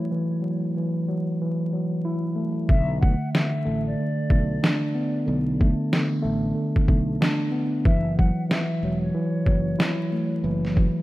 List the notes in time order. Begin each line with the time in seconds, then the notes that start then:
Already playing: E3 F#3 A3 E4
0.12 E3
0.42 F#3
0.77 E3
1.08 F#3
1.41 E3
1.73 F#3
2.05 E4
2.36 A3
2.68 B1 D3 E5, kick
3.01 A3 F#5, kick
3.33 D3 E5, snare
3.65 A1 A3
3.87 D5
3.99 D3
4.30 B1 A3, kick
4.63 D4, snare
4.95 B3
5.26 B1 D3
5.60 A3, kick
5.92 D3, snare
6.23 A1 A3
6.55 D3
6.76 kick
6.88 B1 A3, kick
7.21 D4, snare
7.51 B3
7.85 F#1 E3 E5, kick
8.18 F#3 F#5, kick
8.49 E3 E5, snare
8.83 E1 F#3
9.01 C#5
9.15 E3
9.46 F#1 F#3, kick
9.79 E4, snare
10.12 A3
10.44 F#1 E3
10.65 snare
10.74 F#3, kick